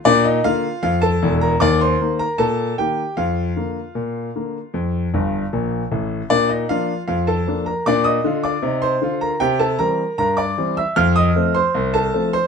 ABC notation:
X:1
M:2/4
L:1/16
Q:1/4=77
K:Bb
V:1 name="Grand piano"
[Dd] [Ee] [Ff]2 [Ff] [Aa]2 [Bb] | [dd'] [cc']2 [Bb] [Aa]2 [Gg]2 | [Ff]8- | [Ff]4 z4 |
[Dd] [Ee] [Ff]2 [Ff] [Aa]2 [Bb] | [dd'] [ee']2 [dd']2 [cc']2 [Bb] | [Gg] [Aa] [Bb]2 [Bb] [dd']2 [=e=e'] | [ff'] [ee']2 [cc']2 [Aa]2 [cc'] |]
V:2 name="Grand piano" clef=bass
B,,2 [D,B,]2 F,,2 [=E,,,=E,,]2 | E,,2 [E,B,]2 B,,2 [E,B,]2 | F,,2 [D,B,]2 B,,2 [D,B,]2 | F,,2 [G,,,G,,]2 [B,,,B,,]2 [A,,,A,,]2 |
B,,2 [F,B,D]2 F,,2 [F,B,D]2 | [B,,D]2 [D,F]2 [C,E]2 [D,F]2 | C,2 [=E,G,C]2 G,,2 [E,G,C]2 | F,,2 [F,A,C]2 C,,2 [F,A,C]2 |]